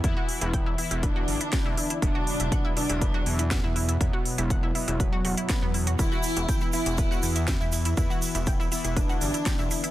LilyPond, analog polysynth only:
\new Staff \with { instrumentName = "Analog polysynth" } { \time 4/4 \key e \minor \tempo 4 = 121 <e b e'>4. <e b e'>2~ <e b e'>8 | <b, fis b>4. <b, fis b>2~ <b, fis b>8 | <b, fis b>4. <b, fis b>4. <b, fis b>4 | <e b e'>4. <e b e'>2~ <e b e'>8 |
<e b e'>4. <e b e'>2~ <e b e'>8 | }